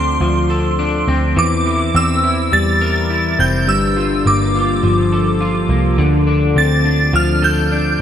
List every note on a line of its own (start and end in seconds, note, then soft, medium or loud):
0.00 0.18 D2 loud
0.00 1.36 D3 medium
0.00 0.20 F3 medium
0.00 1.08 C4 medium
0.00 0.78 D4 medium
0.00 0.49 A4 medium
0.00 1.05 C6 medium
0.21 1.03 D2 loud
0.21 1.42 F3 medium
0.50 1.42 A4 medium
0.79 1.42 D4 medium
1.08 1.35 D2 loud
1.08 1.95 C4 medium
1.36 1.91 E2 loud
1.36 3.67 E3 medium
1.36 1.97 D6 medium
1.66 2.23 E4 medium
1.95 2.49 E2 loud
1.95 3.38 C4 medium
1.95 2.55 E6 loud
2.24 3.09 E4 medium
2.52 3.35 E2 loud
2.52 4.00 G3 medium
2.52 3.42 A6 loud
2.81 5.12 A#4 medium
3.10 3.73 E4 medium
3.39 3.68 F1 medium
3.39 3.73 C4 medium
3.39 3.69 G6 medium
3.68 4.22 G1 loud
3.68 5.98 G2 medium
3.68 4.27 E6 medium
3.97 4.54 F4 medium
4.26 4.80 G1 loud
4.26 5.69 A#3 medium
4.26 5.66 D6 medium
4.55 5.40 F4 medium
4.83 5.66 G1 medium
4.83 7.13 F3 medium
5.12 7.42 A4 medium
5.41 6.26 F4 medium
5.69 5.97 C2 medium
5.69 6.04 A#3 medium
5.98 6.53 D2 loud
5.98 8.02 D3 medium
6.27 6.84 D4 medium
6.56 7.11 D2 loud
6.56 8.00 C4 medium
6.56 7.16 A6 loud
6.85 7.70 D4 medium
7.13 7.96 D2 loud
7.13 8.02 F3 medium
7.13 7.44 F6 loud
7.42 8.02 A4 medium
7.42 8.02 G6 medium
7.72 8.02 D4 medium